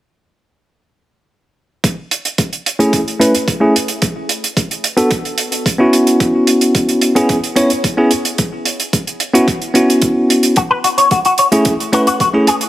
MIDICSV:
0, 0, Header, 1, 4, 480
1, 0, Start_track
1, 0, Tempo, 545455
1, 1619, Time_signature, 4, 2, 24, 8
1, 11165, End_track
2, 0, Start_track
2, 0, Title_t, "Clean electric guitar"
2, 0, Program_c, 0, 27
2, 9299, Note_on_c, 0, 66, 73
2, 9336, Note_off_c, 0, 66, 0
2, 9421, Note_on_c, 0, 71, 92
2, 9480, Note_off_c, 0, 71, 0
2, 9540, Note_on_c, 0, 66, 86
2, 9576, Note_off_c, 0, 66, 0
2, 9659, Note_on_c, 0, 73, 67
2, 9749, Note_off_c, 0, 73, 0
2, 9780, Note_on_c, 0, 66, 77
2, 9841, Note_off_c, 0, 66, 0
2, 9905, Note_on_c, 0, 66, 90
2, 9962, Note_off_c, 0, 66, 0
2, 10021, Note_on_c, 0, 73, 69
2, 10081, Note_off_c, 0, 73, 0
2, 10501, Note_on_c, 0, 66, 70
2, 10561, Note_off_c, 0, 66, 0
2, 10623, Note_on_c, 0, 66, 93
2, 10681, Note_off_c, 0, 66, 0
2, 10742, Note_on_c, 0, 66, 70
2, 10801, Note_off_c, 0, 66, 0
2, 10979, Note_on_c, 0, 68, 71
2, 11040, Note_off_c, 0, 68, 0
2, 11165, End_track
3, 0, Start_track
3, 0, Title_t, "Tine electric piano"
3, 0, Program_c, 1, 4
3, 2456, Note_on_c, 1, 57, 82
3, 2458, Note_on_c, 1, 61, 76
3, 2461, Note_on_c, 1, 64, 76
3, 2465, Note_on_c, 1, 68, 88
3, 2639, Note_off_c, 1, 57, 0
3, 2641, Note_off_c, 1, 61, 0
3, 2642, Note_off_c, 1, 64, 0
3, 2644, Note_off_c, 1, 68, 0
3, 2811, Note_on_c, 1, 57, 76
3, 2813, Note_on_c, 1, 61, 70
3, 2816, Note_on_c, 1, 64, 70
3, 2820, Note_on_c, 1, 71, 85
3, 2930, Note_off_c, 1, 57, 0
3, 2931, Note_off_c, 1, 61, 0
3, 2933, Note_off_c, 1, 64, 0
3, 2935, Note_off_c, 1, 71, 0
3, 3170, Note_on_c, 1, 57, 81
3, 3174, Note_on_c, 1, 61, 75
3, 3177, Note_on_c, 1, 64, 74
3, 3181, Note_on_c, 1, 68, 94
3, 3288, Note_off_c, 1, 57, 0
3, 3290, Note_off_c, 1, 61, 0
3, 3291, Note_off_c, 1, 64, 0
3, 3293, Note_off_c, 1, 68, 0
3, 4370, Note_on_c, 1, 59, 88
3, 4372, Note_on_c, 1, 62, 76
3, 4376, Note_on_c, 1, 66, 77
3, 4379, Note_on_c, 1, 69, 95
3, 4488, Note_off_c, 1, 59, 0
3, 4489, Note_off_c, 1, 62, 0
3, 4490, Note_off_c, 1, 66, 0
3, 4492, Note_off_c, 1, 69, 0
3, 5090, Note_on_c, 1, 59, 88
3, 5095, Note_on_c, 1, 61, 80
3, 5102, Note_on_c, 1, 64, 80
3, 5108, Note_on_c, 1, 66, 94
3, 6266, Note_off_c, 1, 59, 0
3, 6269, Note_off_c, 1, 61, 0
3, 6272, Note_off_c, 1, 64, 0
3, 6275, Note_off_c, 1, 66, 0
3, 6296, Note_on_c, 1, 59, 86
3, 6299, Note_on_c, 1, 61, 82
3, 6302, Note_on_c, 1, 64, 78
3, 6304, Note_on_c, 1, 68, 98
3, 6480, Note_off_c, 1, 59, 0
3, 6481, Note_off_c, 1, 61, 0
3, 6483, Note_off_c, 1, 64, 0
3, 6484, Note_off_c, 1, 68, 0
3, 6652, Note_on_c, 1, 59, 80
3, 6656, Note_on_c, 1, 61, 72
3, 6657, Note_on_c, 1, 64, 72
3, 6660, Note_on_c, 1, 73, 87
3, 6771, Note_off_c, 1, 59, 0
3, 6773, Note_off_c, 1, 61, 0
3, 6773, Note_off_c, 1, 64, 0
3, 6775, Note_off_c, 1, 73, 0
3, 7017, Note_on_c, 1, 59, 83
3, 7019, Note_on_c, 1, 61, 78
3, 7021, Note_on_c, 1, 64, 75
3, 7024, Note_on_c, 1, 68, 90
3, 7131, Note_off_c, 1, 59, 0
3, 7132, Note_off_c, 1, 61, 0
3, 7133, Note_off_c, 1, 64, 0
3, 7135, Note_off_c, 1, 68, 0
3, 8215, Note_on_c, 1, 59, 84
3, 8218, Note_on_c, 1, 61, 77
3, 8221, Note_on_c, 1, 64, 80
3, 8223, Note_on_c, 1, 66, 93
3, 8330, Note_off_c, 1, 59, 0
3, 8332, Note_off_c, 1, 61, 0
3, 8333, Note_off_c, 1, 64, 0
3, 8334, Note_off_c, 1, 66, 0
3, 8569, Note_on_c, 1, 59, 74
3, 8574, Note_on_c, 1, 61, 67
3, 8581, Note_on_c, 1, 64, 66
3, 8587, Note_on_c, 1, 66, 80
3, 9280, Note_off_c, 1, 59, 0
3, 9282, Note_off_c, 1, 61, 0
3, 9286, Note_off_c, 1, 64, 0
3, 9289, Note_off_c, 1, 66, 0
3, 10135, Note_on_c, 1, 57, 87
3, 10138, Note_on_c, 1, 61, 78
3, 10141, Note_on_c, 1, 64, 76
3, 10144, Note_on_c, 1, 68, 94
3, 10319, Note_off_c, 1, 57, 0
3, 10321, Note_off_c, 1, 61, 0
3, 10322, Note_off_c, 1, 64, 0
3, 10324, Note_off_c, 1, 68, 0
3, 10495, Note_on_c, 1, 57, 78
3, 10497, Note_on_c, 1, 61, 69
3, 10500, Note_on_c, 1, 64, 70
3, 10504, Note_on_c, 1, 71, 86
3, 10612, Note_off_c, 1, 57, 0
3, 10614, Note_off_c, 1, 61, 0
3, 10615, Note_off_c, 1, 64, 0
3, 10617, Note_off_c, 1, 71, 0
3, 10854, Note_on_c, 1, 57, 83
3, 10859, Note_on_c, 1, 61, 80
3, 10861, Note_on_c, 1, 64, 80
3, 10864, Note_on_c, 1, 68, 90
3, 10970, Note_off_c, 1, 57, 0
3, 10972, Note_off_c, 1, 61, 0
3, 10973, Note_off_c, 1, 64, 0
3, 10975, Note_off_c, 1, 68, 0
3, 11165, End_track
4, 0, Start_track
4, 0, Title_t, "Drums"
4, 1618, Note_on_c, 9, 36, 107
4, 1621, Note_on_c, 9, 42, 79
4, 1706, Note_off_c, 9, 36, 0
4, 1709, Note_off_c, 9, 42, 0
4, 1860, Note_on_c, 9, 42, 76
4, 1948, Note_off_c, 9, 42, 0
4, 1981, Note_on_c, 9, 42, 60
4, 2069, Note_off_c, 9, 42, 0
4, 2097, Note_on_c, 9, 42, 82
4, 2098, Note_on_c, 9, 36, 90
4, 2185, Note_off_c, 9, 42, 0
4, 2186, Note_off_c, 9, 36, 0
4, 2224, Note_on_c, 9, 42, 43
4, 2312, Note_off_c, 9, 42, 0
4, 2344, Note_on_c, 9, 42, 80
4, 2432, Note_off_c, 9, 42, 0
4, 2465, Note_on_c, 9, 42, 59
4, 2553, Note_off_c, 9, 42, 0
4, 2578, Note_on_c, 9, 36, 101
4, 2579, Note_on_c, 9, 42, 80
4, 2666, Note_off_c, 9, 36, 0
4, 2667, Note_off_c, 9, 42, 0
4, 2708, Note_on_c, 9, 42, 46
4, 2796, Note_off_c, 9, 42, 0
4, 2826, Note_on_c, 9, 42, 80
4, 2914, Note_off_c, 9, 42, 0
4, 2944, Note_on_c, 9, 42, 61
4, 3032, Note_off_c, 9, 42, 0
4, 3059, Note_on_c, 9, 36, 98
4, 3061, Note_on_c, 9, 42, 74
4, 3147, Note_off_c, 9, 36, 0
4, 3149, Note_off_c, 9, 42, 0
4, 3309, Note_on_c, 9, 42, 85
4, 3397, Note_off_c, 9, 42, 0
4, 3417, Note_on_c, 9, 42, 59
4, 3505, Note_off_c, 9, 42, 0
4, 3536, Note_on_c, 9, 42, 78
4, 3539, Note_on_c, 9, 36, 107
4, 3624, Note_off_c, 9, 42, 0
4, 3627, Note_off_c, 9, 36, 0
4, 3777, Note_on_c, 9, 42, 81
4, 3865, Note_off_c, 9, 42, 0
4, 3907, Note_on_c, 9, 42, 63
4, 3995, Note_off_c, 9, 42, 0
4, 4019, Note_on_c, 9, 36, 93
4, 4021, Note_on_c, 9, 42, 72
4, 4107, Note_off_c, 9, 36, 0
4, 4109, Note_off_c, 9, 42, 0
4, 4145, Note_on_c, 9, 42, 51
4, 4233, Note_off_c, 9, 42, 0
4, 4259, Note_on_c, 9, 42, 78
4, 4347, Note_off_c, 9, 42, 0
4, 4377, Note_on_c, 9, 42, 61
4, 4465, Note_off_c, 9, 42, 0
4, 4493, Note_on_c, 9, 42, 76
4, 4499, Note_on_c, 9, 36, 108
4, 4581, Note_off_c, 9, 42, 0
4, 4587, Note_off_c, 9, 36, 0
4, 4622, Note_on_c, 9, 42, 47
4, 4710, Note_off_c, 9, 42, 0
4, 4731, Note_on_c, 9, 42, 87
4, 4819, Note_off_c, 9, 42, 0
4, 4858, Note_on_c, 9, 42, 56
4, 4946, Note_off_c, 9, 42, 0
4, 4979, Note_on_c, 9, 36, 98
4, 4983, Note_on_c, 9, 42, 81
4, 5067, Note_off_c, 9, 36, 0
4, 5071, Note_off_c, 9, 42, 0
4, 5219, Note_on_c, 9, 42, 73
4, 5307, Note_off_c, 9, 42, 0
4, 5341, Note_on_c, 9, 42, 57
4, 5429, Note_off_c, 9, 42, 0
4, 5459, Note_on_c, 9, 36, 112
4, 5459, Note_on_c, 9, 42, 72
4, 5547, Note_off_c, 9, 36, 0
4, 5547, Note_off_c, 9, 42, 0
4, 5696, Note_on_c, 9, 42, 80
4, 5784, Note_off_c, 9, 42, 0
4, 5819, Note_on_c, 9, 42, 59
4, 5907, Note_off_c, 9, 42, 0
4, 5937, Note_on_c, 9, 42, 82
4, 5938, Note_on_c, 9, 36, 98
4, 6025, Note_off_c, 9, 42, 0
4, 6026, Note_off_c, 9, 36, 0
4, 6060, Note_on_c, 9, 42, 50
4, 6148, Note_off_c, 9, 42, 0
4, 6173, Note_on_c, 9, 42, 70
4, 6261, Note_off_c, 9, 42, 0
4, 6302, Note_on_c, 9, 42, 58
4, 6390, Note_off_c, 9, 42, 0
4, 6416, Note_on_c, 9, 42, 78
4, 6419, Note_on_c, 9, 36, 113
4, 6504, Note_off_c, 9, 42, 0
4, 6507, Note_off_c, 9, 36, 0
4, 6543, Note_on_c, 9, 42, 48
4, 6631, Note_off_c, 9, 42, 0
4, 6656, Note_on_c, 9, 42, 86
4, 6744, Note_off_c, 9, 42, 0
4, 6776, Note_on_c, 9, 42, 56
4, 6864, Note_off_c, 9, 42, 0
4, 6899, Note_on_c, 9, 36, 105
4, 6899, Note_on_c, 9, 42, 78
4, 6987, Note_off_c, 9, 36, 0
4, 6987, Note_off_c, 9, 42, 0
4, 7134, Note_on_c, 9, 42, 68
4, 7222, Note_off_c, 9, 42, 0
4, 7260, Note_on_c, 9, 42, 62
4, 7348, Note_off_c, 9, 42, 0
4, 7377, Note_on_c, 9, 42, 64
4, 7380, Note_on_c, 9, 36, 106
4, 7465, Note_off_c, 9, 42, 0
4, 7468, Note_off_c, 9, 36, 0
4, 7616, Note_on_c, 9, 42, 76
4, 7704, Note_off_c, 9, 42, 0
4, 7741, Note_on_c, 9, 42, 55
4, 7829, Note_off_c, 9, 42, 0
4, 7859, Note_on_c, 9, 36, 98
4, 7860, Note_on_c, 9, 42, 68
4, 7947, Note_off_c, 9, 36, 0
4, 7948, Note_off_c, 9, 42, 0
4, 7985, Note_on_c, 9, 42, 45
4, 8073, Note_off_c, 9, 42, 0
4, 8097, Note_on_c, 9, 42, 77
4, 8185, Note_off_c, 9, 42, 0
4, 8228, Note_on_c, 9, 42, 64
4, 8316, Note_off_c, 9, 42, 0
4, 8340, Note_on_c, 9, 36, 114
4, 8343, Note_on_c, 9, 42, 72
4, 8428, Note_off_c, 9, 36, 0
4, 8431, Note_off_c, 9, 42, 0
4, 8462, Note_on_c, 9, 42, 43
4, 8550, Note_off_c, 9, 42, 0
4, 8580, Note_on_c, 9, 42, 76
4, 8668, Note_off_c, 9, 42, 0
4, 8711, Note_on_c, 9, 42, 60
4, 8799, Note_off_c, 9, 42, 0
4, 8814, Note_on_c, 9, 42, 69
4, 8819, Note_on_c, 9, 36, 100
4, 8902, Note_off_c, 9, 42, 0
4, 8907, Note_off_c, 9, 36, 0
4, 9065, Note_on_c, 9, 42, 81
4, 9153, Note_off_c, 9, 42, 0
4, 9178, Note_on_c, 9, 42, 65
4, 9266, Note_off_c, 9, 42, 0
4, 9293, Note_on_c, 9, 42, 62
4, 9299, Note_on_c, 9, 36, 109
4, 9381, Note_off_c, 9, 42, 0
4, 9387, Note_off_c, 9, 36, 0
4, 9541, Note_on_c, 9, 42, 76
4, 9629, Note_off_c, 9, 42, 0
4, 9662, Note_on_c, 9, 42, 59
4, 9750, Note_off_c, 9, 42, 0
4, 9776, Note_on_c, 9, 42, 79
4, 9778, Note_on_c, 9, 36, 92
4, 9864, Note_off_c, 9, 42, 0
4, 9866, Note_off_c, 9, 36, 0
4, 9899, Note_on_c, 9, 42, 50
4, 9987, Note_off_c, 9, 42, 0
4, 10013, Note_on_c, 9, 42, 67
4, 10101, Note_off_c, 9, 42, 0
4, 10137, Note_on_c, 9, 42, 58
4, 10225, Note_off_c, 9, 42, 0
4, 10251, Note_on_c, 9, 42, 69
4, 10257, Note_on_c, 9, 36, 110
4, 10339, Note_off_c, 9, 42, 0
4, 10345, Note_off_c, 9, 36, 0
4, 10387, Note_on_c, 9, 42, 46
4, 10475, Note_off_c, 9, 42, 0
4, 10498, Note_on_c, 9, 42, 74
4, 10586, Note_off_c, 9, 42, 0
4, 10622, Note_on_c, 9, 42, 54
4, 10710, Note_off_c, 9, 42, 0
4, 10737, Note_on_c, 9, 36, 102
4, 10737, Note_on_c, 9, 42, 71
4, 10825, Note_off_c, 9, 36, 0
4, 10825, Note_off_c, 9, 42, 0
4, 10976, Note_on_c, 9, 42, 74
4, 11064, Note_off_c, 9, 42, 0
4, 11096, Note_on_c, 9, 42, 57
4, 11165, Note_off_c, 9, 42, 0
4, 11165, End_track
0, 0, End_of_file